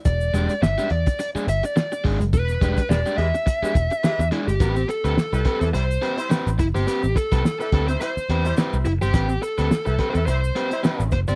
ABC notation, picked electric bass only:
X:1
M:4/4
L:1/16
Q:"Swing 16ths" 1/4=106
K:Em
V:1 name="Picked electric bass" clef=bass
E,,,2 E,,, z G,,, z E,, z3 G,,, z3 ^G,,, F,,, | E,,,2 E,,, z E,,, z E,, z3 E,,, z2 E,, z G,,, | A,,,2 z D,, z C,, z E,, C,,2 z3 A,,, F,,, G,,, | z A,,, z C,, z2 D,,2 z2 E,,2 z C,, F,,, G,,, |
A,,,2 z D,, z C,, z E,, C,,2 z3 A,,, F,,, G,,, |]